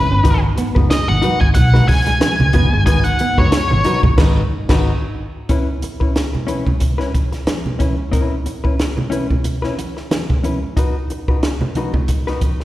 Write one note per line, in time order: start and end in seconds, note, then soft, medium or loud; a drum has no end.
0.00 0.39 B4 medium
0.11 0.21 G1 medium
0.11 0.20 C#4 medium
0.11 muted hollow-body jazz guitar stroke soft
0.24 0.49 G#1 loud
0.24 0.43 D#4 medium
0.24 0.43 F#4 medium
0.24 0.44 B4 medium
0.24 kick loud
0.24 closed hi-hat medium
0.44 muted clean electric guitar stroke soft
0.57 0.69 B3 medium
0.57 muted hollow-body jazz guitar stroke soft
0.57 closed hi-hat medium
0.57 muted conga soft
0.75 0.87 F#1 loud
0.75 0.85 G#3 medium
0.75 0.88 D#4 medium
0.75 0.88 F#4 medium
0.75 0.87 B4 medium
0.75 kick loud
0.90 1.08 D#5 medium
0.90 snare loud
0.90 closed hi-hat medium
0.90 muted conga soft
1.08 1.20 G#1 medium
1.08 1.40 F#5 loud
1.08 muted hollow-body jazz guitar stroke soft
1.08 low conga medium
1.22 1.36 F#3 medium
1.22 1.41 D#4 medium
1.22 1.41 F#4 medium
1.22 1.40 B4 medium
1.22 closed hi-hat medium
1.22 muted conga soft
1.41 1.52 G#1 loud
1.41 1.46 G#5 loud
1.41 muted hollow-body jazz guitar stroke soft
1.41 kick medium
1.54 1.80 B1 medium
1.54 1.86 F#5 loud
1.54 muted hollow-body jazz guitar stroke soft
1.54 kick medium
1.54 closed hi-hat medium
1.74 1.84 G#3 medium
1.74 1.87 D#4 medium
1.74 1.87 F#4 medium
1.74 1.88 B4 medium
1.74 snare soft
1.88 2.83 G#5 loud
1.88 muted hollow-body jazz guitar stroke soft
1.88 muted clean electric guitar stroke soft
1.88 kick loud
1.88 open hi-hat medium
1.88 high conga medium
2.06 2.16 G#3 medium
2.06 muted hollow-body jazz guitar stroke soft
2.06 snare soft
2.06 closed hi-hat soft
2.20 muted hollow-body jazz guitar stroke soft
2.20 muted clean electric guitar stroke soft
2.20 snare loud
2.20 closed hi-hat medium
2.20 muted conga soft
2.20 high conga medium
2.40 2.51 C#2 medium
2.40 low conga medium
2.53 2.67 F#1 medium
2.53 2.66 B3 medium
2.53 2.69 D#4 medium
2.53 2.69 F#4 medium
2.53 2.69 B4 medium
2.53 kick medium
2.53 closed hi-hat medium
2.53 high conga medium
2.72 2.84 G1 medium
2.72 2.82 G#3 medium
2.72 muted hollow-body jazz guitar stroke soft
2.86 3.11 G#1 loud
2.86 3.05 D#4 medium
2.86 3.06 F#4 loud
2.86 3.06 B4 medium
2.86 3.04 G#5 loud
2.86 kick loud
2.86 closed hi-hat medium
3.04 3.39 F#5 medium
3.04 muted clean electric guitar stroke soft
3.04 closed hi-hat medium
3.19 3.32 B3 loud
3.19 muted hollow-body jazz guitar stroke soft
3.19 closed hi-hat medium
3.19 muted conga soft
3.38 3.49 F#1 loud
3.38 3.47 G#3 medium
3.38 3.51 D#4 medium
3.38 3.50 F#4 medium
3.38 3.50 B4 medium
3.38 4.00 C#5 medium
3.38 kick medium
3.52 snare loud
3.52 closed hi-hat medium
3.70 3.82 G#1 medium
3.70 muted hollow-body jazz guitar stroke medium
3.70 low conga medium
3.84 3.97 F#3 medium
3.84 4.04 D#4 medium
3.84 4.04 F#4 medium
3.84 4.03 B4 medium
3.84 snare soft
3.84 closed hi-hat medium
3.84 muted conga soft
4.03 4.14 G#1 medium
4.03 muted hollow-body jazz guitar stroke medium
4.03 kick loud
4.03 low conga medium
4.18 4.41 G#1 loud
4.18 4.42 D#4 loud
4.18 4.42 F#4 loud
4.18 4.41 B4 loud
4.18 kick loud
4.18 snare loud
4.18 crash medium
4.69 4.91 G#1 loud
4.69 4.93 D#4 loud
4.69 4.92 F#4 loud
4.69 4.92 B4 loud
4.69 kick loud
4.69 snare medium
4.69 crash medium
5.49 5.68 C#4 medium
5.49 5.68 E4 medium
5.49 5.69 B4 medium
5.49 kick loud
5.49 closed hi-hat medium
5.82 muted hollow-body jazz guitar stroke soft
5.82 closed hi-hat medium
5.82 muted conga soft
6.00 6.13 C#4 soft
6.00 6.13 E4 soft
6.00 6.12 B4 medium
6.00 kick medium
6.16 snare medium
6.16 closed hi-hat medium
6.16 muted conga soft
6.33 muted hollow-body jazz guitar stroke soft
6.33 low conga medium
6.47 6.66 C#4 medium
6.47 6.66 E4 medium
6.47 6.65 B4 medium
6.47 closed hi-hat medium
6.47 high conga medium
6.66 muted hollow-body jazz guitar stroke soft
6.66 kick medium
6.66 low conga medium
6.80 muted hollow-body jazz guitar stroke soft
6.80 kick medium
6.80 closed hi-hat medium
6.80 muted conga soft
6.98 7.12 C#4 medium
6.98 7.13 E4 medium
6.98 7.13 B4 medium
6.98 snare soft
7.15 kick medium
7.15 closed hi-hat medium
7.15 muted conga soft
7.15 high conga medium
7.32 muted hollow-body jazz guitar stroke soft
7.32 snare soft
7.32 closed hi-hat soft
7.47 muted hollow-body jazz guitar stroke soft
7.47 snare loud
7.47 closed hi-hat medium
7.47 muted conga soft
7.47 high conga medium
7.66 low conga medium
7.79 7.94 C#4 medium
7.79 7.95 E4 medium
7.79 7.95 B4 medium
7.79 kick medium
7.79 closed hi-hat medium
7.79 muted conga soft
7.79 high conga medium
7.98 muted hollow-body jazz guitar stroke soft
8.12 8.34 C#4 medium
8.12 8.34 E4 medium
8.12 8.34 B4 medium
8.12 kick loud
8.12 closed hi-hat medium
8.46 muted hollow-body jazz guitar stroke soft
8.46 closed hi-hat medium
8.46 muted conga soft
8.64 8.76 C#4 medium
8.64 8.76 E4 medium
8.64 8.75 B4 medium
8.64 kick medium
8.79 snare loud
8.79 closed hi-hat medium
8.79 muted conga soft
8.97 muted hollow-body jazz guitar stroke soft
8.97 low conga medium
9.10 9.29 C#4 medium
9.10 9.30 E4 medium
9.10 9.28 B4 medium
9.10 closed hi-hat medium
9.10 muted conga soft
9.10 high conga medium
9.29 muted hollow-body jazz guitar stroke soft
9.29 kick medium
9.29 low conga medium
9.44 muted hollow-body jazz guitar stroke soft
9.44 closed hi-hat medium
9.62 9.76 C#4 medium
9.62 9.77 E4 medium
9.62 9.77 B4 medium
9.62 snare soft
9.78 muted hollow-body jazz guitar stroke soft
9.78 closed hi-hat medium
9.78 high conga medium
9.97 muted hollow-body jazz guitar stroke soft
9.97 snare soft
10.11 muted hollow-body jazz guitar stroke soft
10.11 snare loud
10.11 closed hi-hat medium
10.11 muted conga soft
10.11 high conga medium
10.29 kick medium
10.29 low conga medium
10.44 10.58 C#4 medium
10.44 10.59 E4 medium
10.44 10.59 B4 medium
10.44 closed hi-hat medium
10.44 muted conga soft
10.44 high conga medium
10.63 muted hollow-body jazz guitar stroke soft
10.77 10.95 D#4 medium
10.77 10.96 F#4 medium
10.77 10.96 B4 loud
10.77 kick loud
10.77 closed hi-hat medium
10.77 muted conga soft
11.10 muted hollow-body jazz guitar stroke soft
11.10 closed hi-hat medium
11.28 11.41 D#4 soft
11.28 11.40 F#4 medium
11.28 11.39 B4 medium
11.28 kick medium
11.43 snare loud
11.43 closed hi-hat medium
11.61 muted hollow-body jazz guitar stroke soft
11.61 low conga medium
11.75 11.94 D#4 medium
11.75 11.94 F#4 medium
11.75 11.93 B4 medium
11.75 closed hi-hat medium
11.75 muted conga soft
11.75 high conga medium
11.94 muted hollow-body jazz guitar stroke medium
11.94 kick medium
11.94 low conga medium
12.08 muted hollow-body jazz guitar stroke soft
12.08 kick medium
12.08 closed hi-hat medium
12.27 12.41 D#4 medium
12.27 12.42 F#4 medium
12.27 12.41 B4 medium
12.27 snare soft
12.41 muted hollow-body jazz guitar stroke soft
12.41 kick medium
12.41 closed hi-hat medium
12.41 muted conga soft
12.41 high conga medium
12.60 muted hollow-body jazz guitar stroke soft
12.60 snare soft